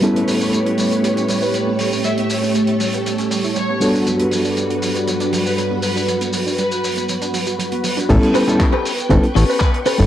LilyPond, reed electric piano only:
\new Staff \with { instrumentName = "Reed electric piano" } { \time 4/4 \key a \mixolydian \tempo 4 = 119 <g b cis' e' a'>1~ | <g b cis' e' a'>2.~ <g b cis' e' a'>8 <g b d' fis' a'>8~ | <g b d' fis' a'>1~ | <g b d' fis' a'>2.~ <g b d' fis' a'>8 r8 |
<g b cis' e' a'>8. <g b cis' e' a'>8 r8. <g b cis' e' a'>16 r4. <g b cis' e' a'>16 | }